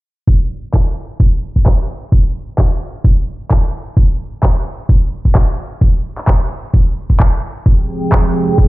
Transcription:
0.27 kick
0.74 kick, clap
1.20 kick
1.56 kick
1.66 kick, clap
2.12 kick
2.58 kick, clap
3.04 kick
3.51 kick, clap
3.97 kick
4.43 kick, clap
4.89 kick
5.25 kick
5.35 kick, clap
5.81 kick
6.18 clap
6.28 kick, clap
6.74 kick
7.10 kick
7.20 kick, clap
7.66 F3 C4 G#4 G5, kick
8.12 kick, clap
8.58 kick

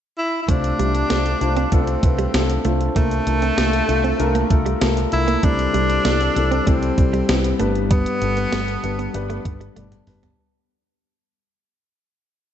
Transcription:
0.18 E4
0.43 E4
0.48 C2 C3 A3 D4 F4 C5, kick, closed hi-hat
0.64 closed hi-hat
0.79 C2 G3 A3 D4 F4 G4, closed hi-hat
0.95 muted clean electric guitar stroke, closed hi-hat
1.10 C2 A3 D4 F4 C5, snare, closed hi-hat
1.26 closed hi-hat
1.41 C2 A3 D4 F4 C5, muted clean electric guitar stroke, closed hi-hat
1.57 C4, closed hi-hat
1.72 C2 A3 C4 D4 F4 A4, kick, closed hi-hat
1.87 muted clean electric guitar stroke, closed hi-hat
2.03 C2 A3 D4 F4 B4, kick, closed hi-hat
2.19 G3, closed hi-hat
2.34 C2 A3 D4 F4 A4, snare, closed hi-hat
2.50 closed hi-hat
2.64 C2 A3 D4 F4 C5, closed hi-hat
2.81 closed hi-hat
2.95 C2 C3 A3 A#3 D4 F4 A#4, kick, closed hi-hat
3.11 closed hi-hat
3.26 C2 A3 D4 F4 A#4, muted clean electric guitar stroke, closed hi-hat
3.42 C4, closed hi-hat
3.57 C2 A3 A#3 D4 F4 A#4, snare, closed hi-hat
3.73 closed hi-hat
3.88 C2 A3 D4 F4 A4, muted clean electric guitar stroke, closed hi-hat
4.04 C4, closed hi-hat
4.19 C2 A3 D4 F4 A#4, closed hi-hat
4.35 A#3, closed hi-hat
4.50 C2 A3 D4 F4 A4, muted clean electric guitar stroke, kick, closed hi-hat
4.66 G3, closed hi-hat
4.81 C2 A3 D4 F4 A#4, snare, closed hi-hat
4.97 muted clean electric guitar stroke, closed hi-hat
5.12 C2 A3 D4 E4 F4 A#4, closed hi-hat
5.28 A#3, closed hi-hat
5.43 C2 C3 G3 A3 C4 D4 E4 A4, kick, closed hi-hat
5.59 closed hi-hat
5.74 C2 G3 C4 E4 C5, closed hi-hat
5.90 muted clean electric guitar stroke, closed hi-hat
6.05 C2 G3 A3 C4 E4 A4, snare, closed hi-hat
6.21 closed hi-hat
6.36 C2 G3 C4 E4 A4, muted clean electric guitar stroke, closed hi-hat
6.51 C4, closed hi-hat
6.67 C2 G3 A3 C4 E4 A4, kick, closed hi-hat
6.82 muted clean electric guitar stroke, closed hi-hat
6.98 C2 G3 C4 E4 A4, kick, closed hi-hat
7.13 G3, closed hi-hat
7.28 C2 G3 C4 E4 B4, snare, closed hi-hat
7.44 closed hi-hat
7.59 G1 G2 G3 A3 B3 D4 B4, closed hi-hat
7.75 closed hi-hat
7.91 G3 B3, kick, closed hi-hat
8.06 closed hi-hat
8.22 G1 G3 B3 D4 A4, muted clean electric guitar stroke, closed hi-hat
8.37 B3, closed hi-hat
8.52 G1 G3 A3 B3 D4, snare, closed hi-hat
8.68 closed hi-hat
8.83 G1 G3 B3 D4 B4, muted clean electric guitar stroke, closed hi-hat
8.99 B3, closed hi-hat
9.14 G1 G3 B3 D4 B4, closed hi-hat
9.30 A3, closed hi-hat
9.45 G1 G3 B3 D4 B4, muted clean electric guitar stroke, kick, closed hi-hat
9.61 G3, closed hi-hat
9.76 G1 G3 A3 B3 D4 D5, closed hi-hat, high tom
9.92 muted clean electric guitar stroke, closed hi-hat, mid tom
10.07 G1 G3 B3 D4 B4, mid tom, open hi-hat
10.23 B3, closed hi-hat, floor tom

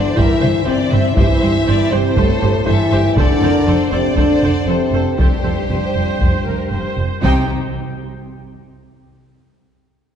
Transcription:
Already playing: D3 D4 C5 D5
0.15 G1 G2 E3 E4 G4 A#4 C5 E5, taiko
0.41 G1 G2 G4 C5, taiko mid
0.64 G1 G2 C3 C4 G4 C5 D5
0.92 G1 G2 G4 C5 E5, taiko mid
1.15 G1 G2 E3 E4 G4 C5 E5, taiko
1.42 G1 G2 G4 C5
1.67 G1 G2 G4 C5 D5
1.91 G1 G2 C3 C4 G4 C5
2.16 G1 G2 A2 A3 G4 A4 C5, taiko
2.41 G1 G2 G4 C5
2.66 G1 G2 E3 E4 G4 A4 C5 E5
2.91 G1 G2 G4 C5
3.16 F1 F2 D3 D4 A4 C5 D5, taiko
3.41 F1 F2 A4 A#4 C5
3.66 F1 F2 A4 C5
3.90 F1 F2 C3 C4 A4 C5 D5
4.16 F1 F2 D3 D4 A4 C5 D5, taiko
4.42 F1 F2 A4 C5
4.66 F1 F2 C3 C4 A4 C5
4.92 F1 F2 A4 C5
5.18 F1 F2 G2 G3 G4 A4 C5, taiko
5.43 F1 F2 A4 C5
5.69 F1 F2 C5
5.95 F1 F2
6.20 F1 F2, taiko
6.46 F1 F2 A#4
6.71 F1 F2 C5
6.97 F1 F2
7.21 C2 C3 C4 D#4 G4 C5 G5, taiko

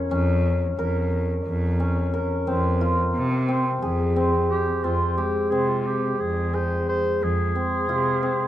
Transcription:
Already playing: C#4 F4 A#4
0.11 F2 C#4
0.78 F2 A#4
1.45 F2
1.80 C#4
2.14 A#4
2.47 F2 C4
2.81 F4
3.15 C3
3.48 C4
3.82 F2 G#4
4.16 C4
4.51 G4
4.84 F2 C4 F4
5.17 G#3 G4
5.51 C3 C4 G#4
5.69 F4
5.86 G4
6.19 F2 G#4
6.53 G#4 C5
6.89 C5
7.21 F2 G#4
7.55 C4
7.88 C3 F4
8.23 C4

